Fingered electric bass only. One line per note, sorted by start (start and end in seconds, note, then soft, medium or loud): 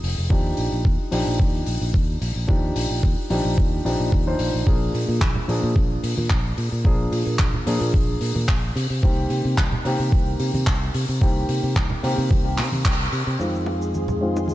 0.03 0.15 F1 medium
0.18 0.28 F1 medium
0.30 0.52 D#2 medium
0.58 0.69 A#1 medium
0.72 0.82 A#1 medium
0.85 0.96 D#2 medium
1.12 1.24 A#1 medium
1.27 1.37 A#1 medium
1.40 1.61 D#2 medium
1.67 1.78 A#1 medium
1.81 1.91 A#1 loud
1.94 2.16 D#2 medium
2.21 2.33 A#1 medium
2.36 2.46 A#1 medium
2.49 2.70 D#2 medium
2.76 2.87 A#1 medium
2.90 3.00 A#1 medium
3.03 3.15 D#2 medium
3.30 3.42 A#1 medium
3.45 3.55 A#1 loud
3.58 3.79 D#2 medium
3.85 3.96 A#1 medium
4.00 4.10 A#1 medium
4.12 4.34 D#2 medium
4.40 4.51 A#1 medium
4.54 4.64 A#1 medium
4.67 4.89 A#1 medium
4.94 5.06 A#2 medium
5.09 5.19 A#2 medium
5.21 5.33 A#1 medium
5.49 5.60 A#2 medium
5.63 5.73 A#2 medium
5.76 5.98 A#1 medium
6.04 6.15 A#2 medium
6.18 6.28 A#2 loud
6.30 6.52 A#1 medium
6.58 6.69 A#2 medium
6.72 6.82 A#2 medium
6.85 7.07 A#1 medium
7.12 7.24 A#2 medium
7.27 7.37 A#2 medium
7.39 7.51 A#1 medium
7.67 7.78 A#2 medium
7.81 7.91 A#2 loud
7.94 8.16 A#1 medium
8.21 8.33 A#2 medium
8.36 8.46 A#2 loud
8.49 8.70 A#1 medium
8.76 8.87 C3 medium
8.90 9.00 C3 medium
9.03 9.25 C2 medium
9.30 9.42 C3 medium
9.45 9.55 C3 medium
9.58 9.69 C2 medium
9.85 9.96 C3 medium
10.00 10.10 C3 loud
10.12 10.34 C2 medium
10.40 10.51 C3 medium
10.55 10.64 C3 loud
10.67 10.89 C2 medium
10.94 11.06 C3 loud
11.09 11.19 C3 medium
11.21 11.43 C2 loud
11.49 11.60 C3 medium
11.63 11.73 C3 medium
11.76 11.87 C2 medium
12.03 12.15 C3 medium
12.18 12.28 C3 loud
12.31 12.59 C2 medium
12.58 12.69 C3 medium
12.72 12.82 C3 medium
12.85 13.07 C2 medium
13.12 13.24 C3 medium
13.27 13.37 C3 medium
13.40 14.54 F2 medium